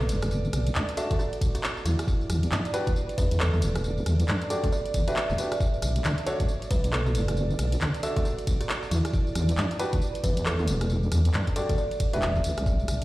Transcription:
Already playing: B1 D5
0.00 A4, tambourine
0.09 F#1, closed hi-hat, tambourine
0.22 cross-stick, closed hi-hat, tambourine
0.31 tambourine
0.45 tambourine
0.53 B1, cross-stick, closed hi-hat, tambourine
0.67 closed hi-hat, tambourine
0.75 D2, clap, tambourine
0.89 closed hi-hat, tambourine
0.97 D4 F#4 A4 E5, closed hi-hat, tambourine
1.11 A1 A4, kick, closed hi-hat, tambourine
1.19 F#4, tambourine
1.33 closed hi-hat, tambourine
1.41 B1, kick, closed hi-hat, tambourine
1.55 F#4, closed hi-hat, tambourine
1.63 clap, tambourine
1.77 tambourine
1.85 E2 E4, closed hi-hat, tambourine
1.99 cross-stick, closed hi-hat, tambourine
2.08 kick, tambourine
2.21 tambourine
2.30 E2, cross-stick, closed hi-hat, tambourine
2.43 closed hi-hat, tambourine
2.52 G2, clap, tambourine
2.65 closed hi-hat, tambourine
2.74 D4 F#4 G4 B4, closed hi-hat, tambourine
2.87 D2, kick, closed hi-hat, tambourine
2.96 tambourine
3.09 closed hi-hat, tambourine
3.18 E2 B4, kick, closed hi-hat, tambourine
3.31 closed hi-hat, tambourine
3.40 A4, clap, tambourine
3.54 A4, tambourine
3.62 E1, closed hi-hat, tambourine
3.76 cross-stick, closed hi-hat, tambourine
3.84 tambourine
3.98 tambourine
4.06 E2, cross-stick, closed hi-hat, tambourine
4.20 closed hi-hat, tambourine
4.28 G2, clap, tambourine
4.42 closed hi-hat, tambourine
4.50 D4 F#4 G4 A4 D5, closed hi-hat, tambourine
4.64 D2 A4, kick, closed hi-hat, tambourine
4.72 D5, tambourine
4.86 closed hi-hat, tambourine
4.94 E2, kick, closed hi-hat, tambourine
5.08 D4 F#4 G4 B4 E5, closed hi-hat, tambourine
5.16 clap, tambourine
5.30 E1, tambourine
5.38 D4 F#4 G4 B4, closed hi-hat, tambourine
5.52 cross-stick, closed hi-hat, tambourine
5.60 kick, tambourine
5.74 tambourine
5.82 B1, cross-stick, closed hi-hat, tambourine
5.96 closed hi-hat, tambourine
6.04 D2, clap, tambourine
6.18 closed hi-hat, tambourine
6.26 D4 F#4 A4 C#5, closed hi-hat, tambourine
6.40 A1, kick, closed hi-hat, tambourine
6.49 tambourine
6.62 closed hi-hat, tambourine
6.71 B1 B4, kick, closed hi-hat, tambourine
6.84 closed hi-hat, tambourine
6.93 A4, clap, tambourine
7.06 A4, tambourine
7.15 F#1, closed hi-hat, tambourine
7.28 cross-stick, closed hi-hat, tambourine
7.37 tambourine
7.50 tambourine
7.59 B1, cross-stick, closed hi-hat, tambourine
7.72 closed hi-hat, tambourine
7.81 D2, clap, tambourine
7.94 closed hi-hat, tambourine
8.03 D4 F#4 A4 E5, closed hi-hat, tambourine
8.16 A1 A4, kick, closed hi-hat, tambourine
8.25 F#4, tambourine
8.39 closed hi-hat, tambourine
8.47 B1, kick, closed hi-hat, tambourine
8.60 F#4, closed hi-hat, tambourine
8.69 clap, tambourine
8.83 tambourine
8.91 E2 E4, closed hi-hat, tambourine
9.05 cross-stick, closed hi-hat, tambourine
9.13 kick, tambourine
9.27 tambourine
9.35 E2, cross-stick, closed hi-hat, tambourine
9.49 closed hi-hat, tambourine
9.57 G2, clap, tambourine
9.71 closed hi-hat, tambourine
9.79 D4 F#4 G4 B4, closed hi-hat, tambourine
9.93 D2, kick, closed hi-hat, tambourine
10.02 tambourine
10.15 closed hi-hat, tambourine
10.24 E2 B4, kick, closed hi-hat, tambourine
10.37 closed hi-hat, tambourine
10.46 A4, clap, tambourine
10.59 A4, tambourine
10.68 E1, closed hi-hat, tambourine
10.81 cross-stick, closed hi-hat, tambourine
10.90 tambourine
11.03 tambourine
11.12 E2, cross-stick, closed hi-hat, tambourine
11.25 closed hi-hat, tambourine
11.34 G2, clap, tambourine
11.47 kick, closed hi-hat, tambourine
11.56 D4 F#4 G4 A4 D5, closed hi-hat, tambourine
11.69 D2 A4, kick, closed hi-hat, tambourine
11.78 D5, tambourine
11.91 closed hi-hat, tambourine
12.00 kick, closed hi-hat, tambourine
12.13 E1 D4 F#4 G4 B4 E5, closed hi-hat, tambourine
12.22 clap, tambourine
12.35 kick, tambourine
12.44 D2, closed hi-hat, tambourine
12.58 B1, cross-stick, closed hi-hat, tambourine
12.66 A5, kick, tambourine
12.80 tambourine
12.88 B1, cross-stick, closed hi-hat, tambourine

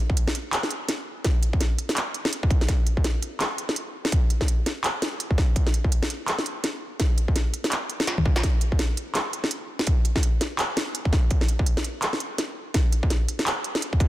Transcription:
0.10 kick
0.17 closed hi-hat
0.28 snare
0.35 closed hi-hat
0.53 clap, closed hi-hat
0.63 snare
0.71 closed hi-hat
0.89 snare, closed hi-hat
1.24 kick, snare, closed hi-hat
1.43 closed hi-hat
1.53 kick
1.61 snare, closed hi-hat
1.79 closed hi-hat
1.89 snare, open hi-hat
1.97 clap, closed hi-hat
2.14 closed hi-hat
2.25 snare
2.33 closed hi-hat
2.43 kick
2.51 kick, closed hi-hat
2.61 snare
2.68 kick, snare, closed hi-hat
2.87 closed hi-hat
2.97 kick
3.04 snare, closed hi-hat
3.22 closed hi-hat
3.40 clap, snare, closed hi-hat
3.58 closed hi-hat
3.69 snare
3.76 closed hi-hat
4.05 snare
4.12 kick, closed hi-hat
4.30 closed hi-hat
4.41 kick, snare
4.48 closed hi-hat
4.66 snare, closed hi-hat
4.84 clap, closed hi-hat
5.02 snare, closed hi-hat
5.20 closed hi-hat
5.31 kick
5.38 kick, snare
5.56 kick, closed hi-hat
5.67 snare
5.74 closed hi-hat
5.84 kick
5.92 closed hi-hat
6.03 snare
6.10 closed hi-hat
6.28 clap, closed hi-hat
6.38 snare
6.46 closed hi-hat
6.64 snare, closed hi-hat
7.00 kick, snare, closed hi-hat
7.18 closed hi-hat
7.28 kick
7.36 snare, closed hi-hat
7.54 closed hi-hat
7.64 snare, open hi-hat
7.72 clap, closed hi-hat
7.90 closed hi-hat
8.00 snare
8.07 snare, closed hi-hat
8.18 kick, high tom
8.26 kick
8.36 snare
8.43 kick, snare, closed hi-hat
8.61 closed hi-hat
8.72 kick
8.79 snare, closed hi-hat
8.97 closed hi-hat
9.15 clap, snare, closed hi-hat
9.33 closed hi-hat
9.44 snare
9.51 closed hi-hat
9.79 snare
9.87 kick, closed hi-hat
10.05 closed hi-hat
10.16 kick, snare
10.23 closed hi-hat
10.41 snare, closed hi-hat
10.59 clap, closed hi-hat
10.77 snare, closed hi-hat
10.95 closed hi-hat
11.05 kick
11.13 kick, snare
11.31 kick, closed hi-hat
11.41 snare
11.48 closed hi-hat
11.59 kick
11.66 closed hi-hat
11.77 snare
11.84 closed hi-hat
12.02 clap, closed hi-hat
12.13 snare
12.20 closed hi-hat
12.38 snare, closed hi-hat
12.74 kick, snare, closed hi-hat
12.92 closed hi-hat
13.03 kick
13.10 snare, closed hi-hat
13.29 closed hi-hat
13.39 snare, open hi-hat
13.47 clap, closed hi-hat
13.64 closed hi-hat
13.75 snare
13.82 closed hi-hat
13.93 kick
14.00 kick, closed hi-hat

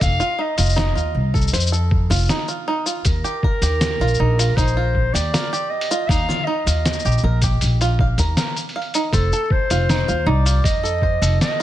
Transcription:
Already playing: A4
0.01 F1 F5, kick, open hi-hat, shaker
0.20 F4, shaker
0.39 D#4 D#5
0.58 F1 F4, open hi-hat, shaker
0.62 shaker
0.65 shaker
0.69 shaker
0.72 shaker
0.75 D#4, snare, open hi-hat, shaker
0.95 D#2 F4, shaker
1.15 C2
1.34 A4, kick, shaker
1.41 shaker
1.47 shaker
1.53 F2 C5, open hi-hat, shaker
1.60 shaker
1.67 shaker
1.72 A4, shaker
1.91 kick
2.10 F1 F4, kick, open hi-hat, shaker
2.13 shaker
2.16 shaker
2.18 shaker
2.20 shaker
2.22 shaker
2.25 shaker
2.27 snare, open hi-hat, shaker
2.30 D#4, shaker
2.48 F4, shaker
2.68 D#4
2.86 F4, shaker
3.05 D#2 A#4, kick, open hi-hat, shaker
3.24 G4, shaker
3.43 A#4, kick
3.62 D#2 G4, open hi-hat, shaker
3.81 snare, open hi-hat, shaker
3.99 A#1 F4, shaker
4.08 shaker
4.14 shaker
4.20 A#1 D#4
4.39 F4, open hi-hat, shaker
4.56 A#1 D#4 C5, kick, open hi-hat, shaker
4.67 shaker
4.77 F4
4.95 kick
5.13 D#2 G4 D5, open hi-hat, shaker
5.34 A#4, snare, open hi-hat, shaker
5.53 G4, shaker
5.70 D#5
5.81 open hi-hat
5.91 F4, shaker
6.08 D#2 D#4 F5, kick, open hi-hat, shaker
6.29 F4, snare, shaker
6.32 snare
6.34 snare
6.37 snare
6.39 snare
6.41 snare
6.43 D#5, snare
6.46 D#4, snare
6.66 D#2 F4, open hi-hat, shaker
6.86 snare, open hi-hat, shaker
6.93 shaker
6.99 shaker
7.05 A#1 G4, shaker
7.11 shaker
7.18 shaker
7.23 A#1 A#4
7.42 G4, kick, open hi-hat, shaker
7.61 A#1, open hi-hat, shaker
7.81 F4, open hi-hat, shaker
7.99 F5, kick
8.18 D#2 A#4, kick, open hi-hat, shaker
8.37 A#4, snare, open hi-hat, shaker
8.56 open hi-hat, shaker
8.69 open hi-hat
8.76 F5
8.82 open hi-hat
8.94 D#4, open hi-hat, shaker
9.13 F1 A4 C5, kick, open hi-hat, shaker
9.33 A4, shaker
9.50 C5, kick
9.70 F1 F4, open hi-hat, shaker
9.89 D#4, snare, open hi-hat, shaker
10.08 D#2 F4, shaker
10.26 C2 D#4 D5
10.46 F4, open hi-hat, shaker
10.64 F2 D#5, kick, open hi-hat, shaker
10.83 A4, shaker
11.02 C5, kick
11.22 F1 A4, open hi-hat, shaker
11.41 D#5, snare, open hi-hat, shaker

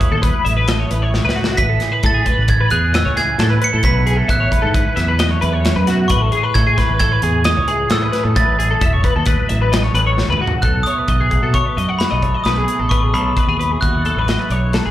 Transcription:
Already playing: A2 A3 E4 A4
0.00 F#3 B4, kick, closed hi-hat
0.11 D#2 A4
0.22 B4, kick, closed hi-hat
0.45 A1 A2 E5, closed hi-hat
0.57 B4
0.68 A3 D#5, snare, closed hi-hat
0.80 C#5
0.91 A1 E4 B4, closed hi-hat
1.02 C#5
1.13 A2 E4, snare
1.25 C#2 B4
1.29 snare
1.36 A3 F#4
1.44 snare
1.57 A1 A2 E4 B4 B6, kick, closed hi-hat
1.69 A4
1.80 C#4 G#4, snare, closed hi-hat
1.92 B4
2.03 A2 E4 A4 A6, kick, closed hi-hat
2.14 G#4
2.25 E3 B4, kick, closed hi-hat
2.38 A1
2.48 A4 G#6, kick, closed hi-hat
2.60 B4
2.70 E2 E3 G#4 F#6, closed hi-hat
2.94 C#4 D#5 E6, snare, closed hi-hat
3.05 C#2 C#5
3.16 E4 G#4 G#6, snare, closed hi-hat
3.39 A2 C#4 A4, snare, closed hi-hat
3.50 E4 B4
3.61 C#4 B4 C#7, closed hi-hat
3.73 A2 A4
3.83 B1 B2 E3 A3 E4 B4 B6, kick, closed hi-hat
3.88 F#4
4.06 A3 G#4, closed hi-hat
4.17 A4
4.28 A1 E4 E5 F#6, kick, closed hi-hat
4.40 C#5
4.51 E3 B4, kick, closed hi-hat
4.62 G#2 A4
4.74 B4, kick, closed hi-hat
4.96 E2 F#2 E5, snare, closed hi-hat
5.08 B4
5.19 A3 D#5, snare, closed hi-hat
5.31 C#5
5.41 E2 E4 B4, closed hi-hat
5.53 C#5
5.65 C#3, snare, closed hi-hat
5.76 F#2 B4
5.87 B2 F#4, snare, closed hi-hat
6.08 A1 A2 B4 C#6, kick, closed hi-hat
6.13 E4
6.21 A4
6.32 C#4 G#4, closed hi-hat
6.43 B4
6.54 A2 E4 A4 G#6, kick, snare, closed hi-hat
6.67 G#4
6.77 E3 B4, kick, snare, closed hi-hat
6.89 A1
7.00 A4 G#6, kick, snare, closed hi-hat
7.12 B4
7.22 E2 E3 G#4, closed hi-hat
7.44 C#4 D#5 D#6, snare, closed hi-hat
7.57 C#2 C#5
7.68 E4 G#4, closed hi-hat
7.90 A2 E4 A4 E6, snare, closed hi-hat
8.02 B4
8.12 C#4 B4, snare, closed hi-hat
8.24 A2 A4
8.35 A1 A2 F#3 A3 E4 A4 B4 A6, kick, closed hi-hat
8.59 A3 G#4, closed hi-hat
8.71 A4
8.81 E1 E4 E5, kick, closed hi-hat
8.93 C#5
9.03 F#3 B4, kick, closed hi-hat
9.16 D#2 A4
9.26 B4, kick, snare, closed hi-hat
9.48 A1 A2 E5, closed hi-hat
9.62 B4
9.72 A3 D#5, snare, closed hi-hat
9.83 C#5
9.94 A1 C#4 B4, closed hi-hat
10.06 E4 C#5
10.17 G#2, snare
10.28 C#2 B4
10.32 mid tom
10.40 A2 F#4
10.47 floor tom
10.62 B1 B2 A4 F#6, kick, closed hi-hat
10.83 A3 C#5 D#6, closed hi-hat
10.98 B4
11.08 B1 D#4 D#5, kick, closed hi-hat
11.20 G#4
11.30 F#3 A3, kick, closed hi-hat
11.42 B2 A4
11.53 A4 C#5 C#6, kick, closed hi-hat
11.66 B4
11.75 F#2 A3 D#5, closed hi-hat
11.89 F#5
11.99 F#4 B5, snare, closed hi-hat
12.10 B1 A4 D#5
12.21 D#4 C#5, kick, closed hi-hat
12.35 D#5
12.44 B1 B2 A4 B4 D#6, snare, closed hi-hat
12.58 G#4
12.68 A3, closed hi-hat
12.79 A1 A4
12.89 B2 A4 B4 C#6, kick, closed hi-hat
13.03 G#4
13.13 B1 A3 A4 B5, closed hi-hat
13.36 D#4 B4, kick, closed hi-hat
13.47 D#2 G#4
13.59 F#3 A3 B4, closed hi-hat
13.72 G#4
13.81 D#2 F#4 F#6, kick, closed hi-hat
13.95 A4
14.05 F#2 A3 A4, closed hi-hat
14.16 A1 B4
14.27 F#4 D#5, snare, closed hi-hat
14.39 A4 B4
14.50 B1 D#4 C#5, closed hi-hat
14.73 C#3 A4, snare, closed hi-hat
14.85 G#1 G#4

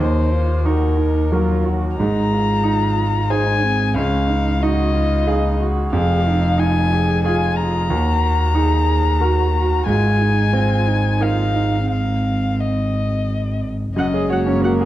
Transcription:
Already playing: D#4
0.00 D#2 C5
0.33 F4
0.65 D#4 F#4 A#4
0.97 D#4
1.32 F#3 F4 A#4
1.65 F#4
1.97 G#1 G#2 D#4 A#5
2.33 F4
2.64 D#4
3.30 D#4 G#4 C5 G#5
3.63 C4
3.95 C#2 C#4 F5
4.27 D#4
4.61 D#4 F#4 D#5
4.94 F4
5.27 D#4 G#4 F5
5.62 F#4
5.93 F1 F2 G#4 F5
6.28 D#4
6.58 D#4 F4 G#5
6.95 G#4
7.25 F4 G#4 G#5
7.57 A#5
7.90 D#2 F#4
8.55 D#4 G#4
9.21 F#4 A#4
9.55 F#4
9.86 G#1 G#2 F4 G#5
10.21 D#4
10.52 C4 F4
10.88 D#4
11.21 D#4 F4 A#4 F5
11.55 D#4
11.91 C4 F5
12.60 D#5
13.95 F#1 F#2 G#3 F#4 A#4 D#5 F#5
14.14 G#4 C#5
14.29 A#3 F#4 C#5 F#5
14.47 C#4 C#5
14.62 F#4 A#4 F#5
14.81 G#4 F#5

